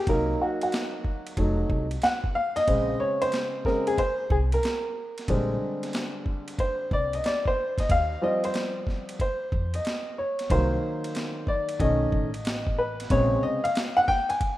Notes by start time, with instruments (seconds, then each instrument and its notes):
0.07 upright bass C2, upright piano F#3 A#3 D#4 A#4, kick, ride
0.42 upright piano F#4
0.61 upright piano F#4, ride
0.72 snare, hi-hat pedal, ride
1.04 kick
1.27 ride
1.37 upright bass F1, upright piano F#3 A3 D#4, kick, ride
1.70 upright bass C2, kick
1.91 ride
2.02 upright piano F#5, snare, hi-hat pedal, ride
2.24 kick
2.35 upright piano F5
2.56 upright piano D#5, snare, ride
2.67 upright bass A#1, upright piano C#3 G#3 C4, kick, ride
3.00 upright piano C#5
3.22 upright piano C5, ride
3.32 snare, hi-hat pedal, ride
3.65 upright piano C#3 G#3 C4 A#4, kick, snare
3.87 upright piano G#4, ride
3.98 upright piano C5, kick, ride
4.30 upright bass C2, upright piano G#4, kick
4.52 upright piano A#4, ride
4.63 snare, hi-hat pedal, ride
5.18 snare, ride
5.28 upright bass A#1, upright piano D3 G3 G#3 C4, kick, ride
5.83 snare, ride
5.93 snare, hi-hat pedal, ride
6.26 kick
6.48 ride
6.59 upright piano C5, kick, ride
6.91 upright bass C2, upright piano D5, kick
7.13 upright piano D#5, ride
7.24 upright piano D5, snare, hi-hat pedal, ride
7.46 upright piano C5, kick
7.78 upright piano D#5, kick, snare, ride
7.89 upright bass D#2, upright piano F5, kick, ride
8.22 upright piano F3 G3 C4 D#5
8.44 upright piano C5, ride
8.54 snare, hi-hat pedal, ride
8.87 kick, snare
9.09 ride
9.20 upright piano C5, kick, ride
9.52 upright bass F2, kick
9.74 upright piano D#5, ride
9.85 snare, hi-hat pedal, ride
10.18 upright piano C#5
10.39 snare, ride
10.50 upright bass C2, upright piano D#3 F#3 A#3 C5, kick, ride
11.04 ride
11.15 snare, hi-hat pedal, ride
11.47 upright piano D5, kick
11.69 ride
11.79 upright bass B1, upright piano D#3 A3 C#4 D#5, kick, ride
12.12 upright bass A1, kick
12.34 ride
12.45 snare, hi-hat pedal, ride
12.67 kick
12.78 upright piano B4
13.00 snare, ride
13.10 upright bass A#1, upright piano C3 C#3 G#3 C#5, kick, ride
13.43 upright piano D#5
13.64 upright piano F5, ride
13.75 snare, hi-hat pedal, ride
13.97 upright piano F#5
14.08 upright piano G5, kick, snare
14.29 upright piano G#5, ride
14.41 kick, ride